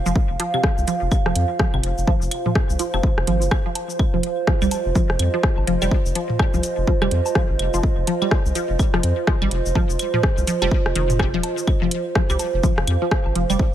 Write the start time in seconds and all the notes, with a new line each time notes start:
Already playing: F4 C5 F5
0.06 F1 F3, cabasa
0.16 kick
0.30 F1
0.40 F3, closed hi-hat, low woodblock
0.54 C3, claves
0.64 kick, cross-stick
0.78 C2, cabasa
0.88 F3, closed hi-hat, cabasa
1.02 F1
1.12 kick, cabasa, claves
1.26 F1 F3, cross-stick, low woodblock
1.36 F2, closed hi-hat
1.59 F3, kick, cross-stick
1.74 G#1 C3, claves
1.83 F1, closed hi-hat
1.98 F1, cabasa
2.07 F3, kick, low woodblock
2.22 F1, cabasa
2.31 closed hi-hat, claves
2.46 F3, mid tom
2.55 kick, cross-stick
2.70 C2, cabasa
2.79 F3, closed hi-hat, cabasa
2.94 F1 C3, claves, low woodblock
3.03 kick
3.18 F1, cross-stick
3.27 G#1 F3, closed hi-hat
3.42 F1, closed hi-hat, cabasa
3.51 kick, cross-stick, claves
3.66 F3
3.75 closed hi-hat, low woodblock
3.90 cabasa
3.99 kick, claves
4.14 F1 F3
4.23 closed hi-hat
4.29 D#5
4.47 F3, kick, cross-stick
4.62 C2 G3, cabasa, claves
4.71 closed hi-hat, cabasa, low woodblock
4.86 F1
4.95 F3, kick, cabasa
5.10 F1, cross-stick
5.19 F2, closed hi-hat, claves
5.34 F3
5.43 kick, cross-stick
5.58 G#1, low woodblock
5.67 F1 F3, closed hi-hat
5.82 F1 G3, cabasa, claves
5.91 kick
6.06 F1, cabasa
6.15 F3, closed hi-hat
6.30 mid tom
6.39 kick, cross-stick, claves, low woodblock
6.54 C2 F3, cabasa
6.63 closed hi-hat, cabasa
6.78 F1
6.87 F3, kick
7.02 F1 G3, cross-stick, claves
7.11 F2, closed hi-hat
7.26 cabasa, low woodblock
7.35 F3, kick, cross-stick
7.50 G#1
7.59 F1, closed hi-hat, claves
7.74 F1 F3, cabasa
7.83 kick
7.98 F1
8.07 F3, closed hi-hat, low woodblock
8.22 G3, claves
8.31 kick, cross-stick
8.46 C2, cabasa
8.55 F3, closed hi-hat, cabasa
8.70 F1
8.79 kick, cabasa, claves
8.94 F1 F3, cross-stick, low woodblock
9.03 F2, closed hi-hat
9.27 F3, kick, cross-stick
9.42 G#1 G3, claves
9.51 F1, closed hi-hat
9.66 F1, cabasa
9.75 F3, kick, low woodblock
9.90 F1, cabasa
9.99 closed hi-hat, cabasa, claves
10.14 F3, mid tom
10.23 kick, cross-stick
10.38 C2, cabasa
10.47 F3, closed hi-hat, cabasa
10.62 F1 G3, closed hi-hat, claves, low woodblock
10.71 kick
10.86 F1, cross-stick
10.95 F1 D#3, closed hi-hat
11.10 closed hi-hat, mid tom, cabasa
11.19 C3, kick, cross-stick, claves
11.34 D#1 F3
11.43 closed hi-hat, low woodblock
11.58 cabasa
11.67 kick, claves
11.82 F1 F3
11.91 closed hi-hat
11.97 F5
12.15 F3, kick, cross-stick
12.30 C2 G3, cabasa, claves
12.39 closed hi-hat, cabasa, low woodblock
12.54 F1
12.63 F3, kick, cabasa
12.78 F1, cross-stick
12.87 F2, closed hi-hat, claves
13.02 F3
13.11 kick, cross-stick
13.26 G#1, low woodblock
13.35 F1 F3, closed hi-hat
13.50 F1 G3, cabasa, claves
13.59 kick